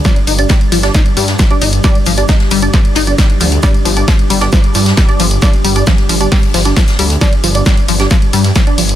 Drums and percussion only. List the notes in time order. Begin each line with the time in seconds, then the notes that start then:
0.05 kick, snare, closed hi-hat, ride, tambourine, shaker
0.16 ride, tambourine
0.27 open hi-hat, ride, tambourine, shaker
0.39 closed hi-hat, ride, tambourine
0.49 kick, snare, closed hi-hat, ride, tambourine, shaker
0.61 ride, tambourine
0.72 open hi-hat, ride, tambourine, shaker
0.83 snare, closed hi-hat, ride, tambourine
0.94 kick, snare, closed hi-hat, ride, tambourine, shaker
1.06 ride, tambourine
1.17 open hi-hat, ride, tambourine, shaker
1.28 snare, closed hi-hat, ride, tambourine
1.39 kick, snare, closed hi-hat, ride, tambourine, shaker
1.50 ride, tambourine
1.61 open hi-hat, ride, tambourine, shaker
1.73 closed hi-hat, ride, tambourine
1.84 kick, snare, closed hi-hat, ride, tambourine, shaker
1.95 ride, tambourine
2.06 open hi-hat, ride, tambourine, shaker
2.18 closed hi-hat, ride, tambourine
2.28 kick, snare, closed hi-hat, ride, tambourine, shaker
2.39 snare, ride, tambourine
2.51 open hi-hat, ride, tambourine, shaker
2.62 closed hi-hat, ride, tambourine
2.74 kick, snare, closed hi-hat, ride, tambourine, shaker
2.85 ride, tambourine
2.95 snare, open hi-hat, ride, tambourine, shaker
3.07 closed hi-hat, ride, tambourine
3.18 kick, snare, closed hi-hat, ride, tambourine, shaker
3.30 ride, tambourine
3.40 open hi-hat, ride, tambourine, shaker
3.52 closed hi-hat, ride, tambourine
3.63 kick, snare, closed hi-hat, ride, tambourine, shaker
3.74 ride, tambourine
3.85 open hi-hat, ride, tambourine, shaker
3.97 closed hi-hat, ride, tambourine
4.08 kick, snare, closed hi-hat, ride, tambourine, shaker
4.19 ride, tambourine
4.30 open hi-hat, ride, tambourine, shaker
4.41 snare, closed hi-hat, ride, tambourine
4.52 kick, snare, closed hi-hat, ride, tambourine, shaker
4.64 ride, tambourine
4.74 open hi-hat, ride, tambourine, shaker
4.86 snare, closed hi-hat, ride, tambourine
4.97 kick, snare, closed hi-hat, ride, tambourine, shaker
5.09 ride, tambourine
5.20 open hi-hat, ride, tambourine, shaker
5.31 closed hi-hat, ride, tambourine
5.42 kick, snare, closed hi-hat, ride, tambourine, shaker
5.53 ride, tambourine
5.65 open hi-hat, ride, tambourine, shaker
5.76 closed hi-hat, ride, tambourine
5.87 kick, snare, closed hi-hat, ride, tambourine, shaker
5.97 snare, ride, tambourine
6.09 open hi-hat, ride, tambourine, shaker
6.21 closed hi-hat, ride, tambourine
6.31 kick, snare, closed hi-hat, open hi-hat, ride, tambourine
6.43 ride, tambourine
6.54 snare, open hi-hat, ride, tambourine, shaker
6.65 snare, closed hi-hat, ride, tambourine
6.76 kick, snare, closed hi-hat, ride, tambourine, shaker
6.87 snare, ride, tambourine, shaker
6.99 open hi-hat, ride, tambourine, shaker
7.10 closed hi-hat, ride, tambourine
7.21 kick, snare, closed hi-hat, ride, tambourine, shaker
7.33 ride, tambourine
7.44 open hi-hat, ride, tambourine, shaker
7.55 closed hi-hat, ride, tambourine
7.66 kick, snare, closed hi-hat, ride, tambourine, shaker
7.77 ride, tambourine
7.88 open hi-hat, ride, tambourine, shaker
8.00 snare, closed hi-hat, ride, tambourine
8.11 kick, snare, closed hi-hat, ride, tambourine, shaker
8.22 ride, tambourine
8.33 open hi-hat, ride, tambourine, shaker
8.44 snare, closed hi-hat, ride, tambourine
8.55 kick, snare, closed hi-hat, ride, tambourine, shaker
8.67 ride, tambourine
8.78 open hi-hat, ride, tambourine, shaker
8.89 closed hi-hat, ride, tambourine